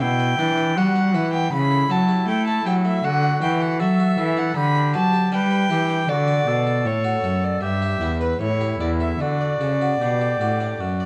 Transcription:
0.00 B2 E4 G5
0.20 B4
0.39 E3 D4
0.58 B4
0.77 G3 B3 F#4 F#5
0.96 D4
1.14 E3 B4
1.33 B3 G5
1.51 C#3 E4 B5
1.71 A4
1.90 F#3 E4 A5
2.09 G4
2.28 A3 G5
2.47 E4 A5
2.66 F#3 G4 G5
2.85 A3 E5
3.04 D3 F#4 F#5
3.23 D5
3.42 E3 F#4 G5
3.61 A4 F#5
3.80 F#3 D4 A4 E5
4.00 F#4
4.18 E3 A4
4.37 D4 F#5
4.56 D3 G4 B5
4.75 D5
4.94 F#3 B4 A5
5.13 G4
5.32 G3 D4 B4 G5
5.51 B4
5.70 E3 G4
5.89 D4
6.08 D3 F#4 D5
6.28 F#4
6.47 B2 A4
6.67 A4
6.85 A2 C#5
7.04 F#4
7.23 F#2 A4
7.44 D5
7.62 G2 G4 E5
7.82 G4
8.01 E2 E4
8.21 B4
8.40 A2 E4 C#5
8.61 G4
8.80 E2 E4 D5
9.00 A4 E5
9.19 D3 F#4 D5
9.41 D5
9.60 C#3 A4
9.81 F#4
10.00 B2 D4 G4
10.21 A4
10.40 A2 F#4
10.60 D4
10.80 F#2 F#4
11.00 D5

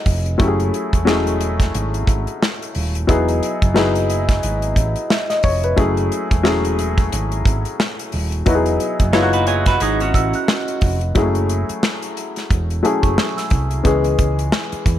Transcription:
Already playing: F#3 B3 D#4 E4 G#4
0.06 F1, kick, open hi-hat
0.26 closed hi-hat
0.38 F#1 F#3 A3 C#4 E4 G4, kick, closed hi-hat
0.48 G#4
0.60 closed hi-hat
0.74 closed hi-hat
0.93 E1, kick, closed hi-hat
1.05 F#3 G#3 C#4 E4 G#4, snare
1.12 A3
1.27 closed hi-hat
1.41 closed hi-hat
1.60 kick, snare, closed hi-hat
1.75 G#1, closed hi-hat
1.94 closed hi-hat
2.07 G#1, kick, closed hi-hat
2.27 closed hi-hat
2.43 snare
2.62 closed hi-hat
2.75 D#1, open hi-hat
2.95 closed hi-hat
3.07 E1 F#3 B3 D#4 E4 G#4, kick, closed hi-hat
3.28 closed hi-hat
3.43 closed hi-hat
3.62 F#1, kick, closed hi-hat
3.74 F#3 B3 D#4 E4 G#4, snare
3.95 closed hi-hat
4.10 closed hi-hat
4.29 kick, snare, closed hi-hat
4.43 G#1, closed hi-hat
4.62 closed hi-hat
4.76 A1, kick, closed hi-hat
4.96 closed hi-hat
5.10 E5, snare
5.30 D#5, snare, closed hi-hat
5.43 F1 C#5, kick, open hi-hat
5.63 B4, closed hi-hat
5.76 F#1 F#3 A3 C#4 E4 G#4, kick, closed hi-hat
5.97 closed hi-hat
6.12 closed hi-hat
6.31 E1, kick, closed hi-hat
6.43 F#3 A3 C#4 E4 G#4, snare
6.65 closed hi-hat
6.79 closed hi-hat
6.98 kick, closed hi-hat
7.12 G#1, closed hi-hat
7.32 closed hi-hat
7.45 G#1, kick, closed hi-hat
7.65 closed hi-hat
7.80 snare
7.99 closed hi-hat
8.12 D#1, open hi-hat
8.32 closed hi-hat
8.46 E1 F#3 B3 D#4 E4 F#4, kick, closed hi-hat
8.55 G#4
8.66 closed hi-hat
8.80 closed hi-hat
9.00 F#1, kick, closed hi-hat
9.13 F#3 B3 D#4 E4 F4 G#4 C#5, snare
9.22 F#4
9.33 F#4 B4, closed hi-hat
9.47 G#4 C#5 G#5, closed hi-hat
9.66 F#4 B4 B5, kick, snare, closed hi-hat
9.80 G#1 D#4 G#4 D#6, closed hi-hat
10.00 C#4 F#4, closed hi-hat
10.14 A1 E6, kick, closed hi-hat
10.33 F#6, closed hi-hat
10.48 snare
10.68 closed hi-hat
10.81 F1, kick, open hi-hat
11.01 closed hi-hat
11.15 F#1 F#3 G#3 C#4 E4 G#4, kick, closed hi-hat
11.22 A3
11.35 closed hi-hat
11.49 closed hi-hat
11.69 muted fingered electric bass stroke, closed hi-hat
11.83 snare
12.02 closed hi-hat
12.17 closed hi-hat
12.36 snare, closed hi-hat
12.51 E1, kick, closed hi-hat
12.70 closed hi-hat
12.83 F#3 A3 C#4 E4 G#4 A5, closed hi-hat
13.02 F#1 C#6, kick, closed hi-hat
13.18 snare
13.37 E6, snare, closed hi-hat
13.50 C2, kick, closed hi-hat
13.71 closed hi-hat
13.84 C#2 E3 G#3 B3 C#4 G#4, kick, closed hi-hat
14.04 closed hi-hat
14.19 C#2, kick, closed hi-hat
14.39 closed hi-hat
14.52 snare
14.72 muted fingered electric bass stroke, closed hi-hat
14.86 E2, kick, closed hi-hat

